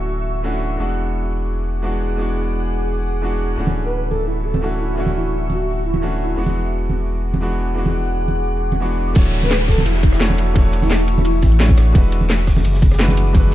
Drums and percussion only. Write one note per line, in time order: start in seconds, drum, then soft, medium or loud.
3.67 high conga medium
4.11 high conga medium
4.54 high conga medium
5.06 high conga medium
5.50 high conga medium
5.94 high conga medium
6.46 high conga medium
6.89 high conga medium
7.34 high conga medium
7.86 high conga medium
8.28 high conga medium
8.72 high conga medium
9.15 kick loud
9.15 closed hi-hat loud
9.15 crash loud
9.15 ride medium
9.15 high conga medium
9.33 closed hi-hat medium
9.33 ride medium
9.33 shaker medium
9.43 high conga medium
9.51 snare loud
9.51 closed hi-hat loud
9.51 ride medium
9.60 shaker soft
9.68 kick medium
9.68 cross-stick soft
9.68 snare soft
9.68 closed hi-hat medium
9.68 open hi-hat medium
9.68 shaker medium
9.78 high conga loud
9.86 closed hi-hat loud
9.86 ride medium
9.95 snare soft
10.03 kick loud
10.03 closed hi-hat medium
10.03 ride medium
10.03 high conga medium
10.03 shaker medium
10.12 cross-stick soft
10.12 snare medium
10.12 closed hi-hat soft
10.21 snare loud
10.21 closed hi-hat loud
10.21 ride medium
10.30 snare medium
10.30 high conga medium
10.38 open hi-hat medium
10.38 ride medium
10.38 shaker medium
10.56 kick loud
10.56 closed hi-hat medium
10.56 ride loud
10.56 high conga loud
10.73 closed hi-hat medium
10.73 ride medium
10.73 shaker medium
10.82 snare soft
10.82 high conga medium
10.90 snare loud
10.90 closed hi-hat loud
10.90 ride medium
11.00 shaker soft
11.08 closed hi-hat medium
11.08 ride medium
11.08 shaker medium
11.18 high conga loud
11.25 closed hi-hat loud
11.25 ride medium
11.42 kick medium
11.42 snare soft
11.42 closed hi-hat medium
11.42 ride medium
11.42 high conga medium
11.42 shaker medium
11.52 closed hi-hat soft
11.60 snare loud
11.60 closed hi-hat loud
11.60 ride medium
11.69 kick loud
11.69 high conga medium
11.78 cross-stick medium
11.78 snare soft
11.78 open hi-hat medium
11.78 ride medium
11.78 shaker medium
11.95 kick loud
11.95 closed hi-hat medium
11.95 ride loud
11.95 high conga loud
12.12 closed hi-hat medium
12.12 ride medium
12.12 shaker medium
12.21 high conga medium
12.30 snare loud
12.30 closed hi-hat medium
12.30 ride medium
12.39 shaker soft
12.47 kick medium
12.47 cross-stick soft
12.47 snare soft
12.47 closed hi-hat medium
12.47 open hi-hat medium
12.47 shaker medium
12.57 high conga loud
12.64 closed hi-hat medium
12.64 ride medium
12.74 snare soft
12.82 kick loud
12.82 closed hi-hat medium
12.82 ride medium
12.82 high conga medium
12.82 shaker medium
12.91 cross-stick soft
12.91 snare medium
12.91 closed hi-hat soft
12.99 snare loud
12.99 closed hi-hat medium
12.99 ride medium
13.08 snare medium
13.08 high conga loud
13.17 open hi-hat medium
13.17 ride medium
13.17 shaker medium
13.35 kick loud
13.35 closed hi-hat medium
13.35 ride medium
13.35 high conga loud